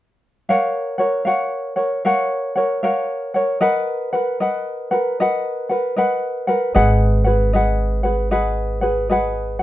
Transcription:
0.49 ukulele A#4 C#5 F5 F#5
0.98 ukulele A#4 C#5 F#5
1.25 ukulele A#4 C#5 F5 F#5
1.76 ukulele A#4 C#5 F#5
2.05 ukulele A#4 C#5 F5 F#5
2.56 ukulele A#4 C#5 F#5
2.83 ukulele A#4 C#5 F5 F#5
3.34 ukulele A#4 C#5 F#5
3.61 ukulele A#4 B4 D#5 F#5
4.13 ukulele A#4 B4 F#5
4.40 ukulele A#4 B4 D#5 F#5
4.91 ukulele A#4 B4 F#5
5.20 ukulele A#4 B4 D#5 F#5
5.69 ukulele A#4 B4 F#5
5.96 ukulele A#4 B4 D#5 F#5
6.47 ukulele A#4 B4 F#5
6.75 upright bass G#1, ukulele G#4 B4 D#5 F#5
7.24 ukulele G#4 B4 F#5
7.53 ukulele G#4 B4 D#5 F#5
8.03 ukulele G#4 B4 F#5
8.31 ukulele G#4 B4 D#5 F#5
8.81 ukulele G#4 B4 F#5
9.10 ukulele G#4 B4 D#5 F#5
9.59 ukulele F#5

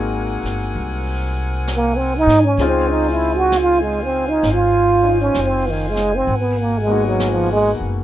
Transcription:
Already playing: upright bass G#1, grand piano G#3 A#3 C4 D#4 F#4, saxophone section C4 A#4 F#5 G#5
0.43 upright bass G1, snare
0.76 upright bass C2, brush sweep
1.68 brush sweep, snare, hi-hat pedal
1.76 trombone A#3
1.97 trombone C4
2.17 trombone D#4
2.27 upright bass G#2, snare
2.44 trombone C#4
2.57 upright bass C#2, grand piano G#3 C4 C#4 D#4, brush sweep, snare
2.61 grand piano F4, saxophone section C5 F5
2.67 trombone C4
2.90 trombone D#4
3.11 trombone E4
3.36 trombone F#4
3.52 brush sweep, snare, hi-hat pedal
3.62 trombone F4
3.82 trombone G#3
4.04 trombone C4
4.29 trombone D#4
4.43 upright bass G#1, brush sweep, snare
4.53 trombone F4
5.03 grand piano C#4 D#4 F4
5.20 trombone C#4
5.34 upright bass F#1, brush sweep, snare, hi-hat pedal
5.44 trombone C4
5.69 trombone D#3
5.89 trombone G#3
5.96 snare
6.16 trombone C4
6.27 upright bass G#1, saxophone section B2 A#4 F#5, brush sweep
6.39 trombone B3
6.60 trombone A#3
6.81 trombone G#3
6.87 grand piano G#3 A#3 B3 D#4
6.91 grand piano F#4
7.07 trombone F#3
7.20 brush sweep, snare, hi-hat pedal
7.32 trombone F3
7.53 trombone G#3
7.80 upright bass F#1

